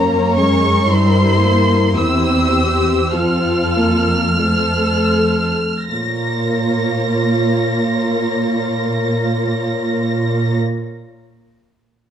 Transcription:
0.00 0.89 F#2 soft
0.00 0.38 A#3 soft
0.00 0.89 C#4 soft
0.00 1.95 A#4 soft
0.00 0.89 C#5 soft
0.00 0.39 A#5 medium
0.39 0.89 G#3 soft
0.39 0.88 C#6 medium
0.89 1.93 G2 soft
0.89 1.42 G3 soft
0.89 1.94 E4 soft
0.89 1.94 C5 soft
0.89 1.95 C6 medium
1.42 1.96 A#3 soft
1.95 3.12 E2 soft
1.95 3.12 C4 soft
1.95 2.52 E4 soft
1.95 3.12 G4 soft
1.95 3.10 C5 soft
1.95 3.13 E6 medium
2.53 3.12 G4 soft
3.12 5.56 F2 soft
3.12 3.74 C4 soft
3.12 4.42 F4 soft
3.12 4.40 A4 soft
3.12 5.91 F6 medium
3.77 4.42 A#3 soft
4.41 5.54 A3 soft
4.41 5.54 A4 soft
4.41 5.57 A4 soft
4.41 5.54 C5 soft
5.90 10.58 A#2 soft
5.90 10.58 A#3 soft
5.90 10.58 F4 soft
5.90 10.58 A#4 soft
5.90 10.58 C#5 soft
5.90 10.57 A#6 soft

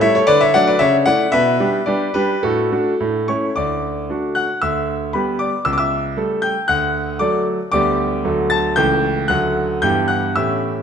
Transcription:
0.01 0.21 G3 medium
0.01 0.21 A3 medium
0.01 0.22 E4 medium
0.01 0.14 C#5 medium
0.01 0.15 E5 loud
0.15 0.28 A4 medium
0.15 0.28 C#5 medium
0.27 0.53 D3 medium
0.27 0.40 B4 medium
0.27 0.41 D5 loud
0.41 0.54 C#5 medium
0.41 0.54 E5 loud
0.54 0.73 F#3 medium
0.54 0.74 A3 medium
0.54 0.74 D4 medium
0.54 0.66 D5 medium
0.54 0.67 F#5 loud
0.67 0.80 B4 medium
0.67 0.80 D5 medium
0.79 1.06 C#3 medium
0.79 1.05 C#5 medium
0.79 0.95 E5 loud
1.06 1.25 A3 medium
1.06 1.26 E4 medium
1.06 1.31 D5 medium
1.06 1.32 F#5 loud
1.32 1.59 B2 medium
1.32 1.83 B4 medium
1.32 1.86 E5 loud
1.60 1.79 G3 medium
1.60 1.80 D4 medium
1.60 1.80 G4 medium
1.86 2.07 G3 medium
1.86 2.07 D4 medium
1.86 2.08 G4 medium
1.86 2.12 B4 medium
1.86 2.12 D5 medium
2.14 2.36 G3 medium
2.14 2.36 D4 medium
2.14 2.42 G4 medium
2.14 2.40 B4 medium
2.43 2.72 A2 medium
2.43 2.71 F#4 medium
2.43 3.29 A4 medium
2.72 2.93 A3 soft
2.72 2.93 D4 soft
2.72 2.93 F#4 medium
3.00 3.28 A2 medium
3.28 3.49 A3 soft
3.28 3.49 C#4 medium
3.28 3.49 E4 medium
3.28 3.55 C#5 medium
3.28 3.53 C#6 medium
3.56 4.08 D2 medium
3.56 4.32 D5 medium
3.56 4.04 D6 medium
4.10 4.48 A3 soft
4.10 4.48 D4 soft
4.10 4.48 F#4 soft
4.35 4.60 F#5 medium
4.35 4.51 F#6 medium
4.62 5.13 D2 medium
4.62 5.11 E5 medium
4.62 5.10 E6 medium
5.13 5.51 G3 soft
5.13 5.51 B3 soft
5.13 5.52 G4 soft
5.13 5.38 B4 soft
5.13 5.37 B5 medium
5.39 5.64 D5 medium
5.39 5.63 D6 medium
5.65 6.15 C#2 medium
5.65 5.72 E6 medium
5.73 5.79 D6 medium
5.78 6.39 E5 medium
5.78 6.38 E6 medium
6.17 6.54 G3 soft
6.17 6.55 A3 soft
6.17 6.55 A4 medium
6.42 6.67 G5 medium
6.42 6.66 G6 medium
6.68 7.19 D2 medium
6.68 7.17 F#5 medium
6.68 6.99 F#6 medium
7.19 7.57 F#3 soft
7.19 7.58 A3 soft
7.19 7.58 A4 medium
7.19 7.44 D5 medium
7.19 7.43 D6 medium
7.72 8.23 D2 medium
7.72 8.20 G3 soft
7.72 8.21 B3 soft
7.72 8.21 G4 medium
7.72 8.47 D5 medium
7.72 8.19 D6 medium
8.25 8.76 D2 medium
8.25 8.73 F#3 soft
8.25 8.73 A3 soft
8.25 8.74 A4 soft
8.50 8.75 A5 medium
8.50 8.76 A6 medium
8.76 9.28 C#2 medium
8.76 9.25 E3 medium
8.76 9.26 A3 medium
8.76 9.26 A4 medium
8.76 9.26 G5 medium
8.76 9.29 G6 loud
9.28 9.81 D2 medium
9.28 9.78 F#3 soft
9.28 9.79 A3 soft
9.28 9.79 A4 medium
9.28 9.79 F#5 medium
9.28 9.82 F#6 medium
9.82 10.35 G2 medium
9.82 10.32 E3 medium
9.82 10.33 B3 soft
9.82 10.33 G4 soft
9.82 10.08 G5 medium
9.82 9.98 G6 medium
10.08 10.34 F#5 medium
10.08 10.35 F#6 medium
10.36 10.82 A2 medium
10.36 10.82 E3 soft
10.36 10.82 C#4 soft
10.36 10.82 G4 soft
10.36 10.82 E5 medium
10.36 10.82 E6 medium

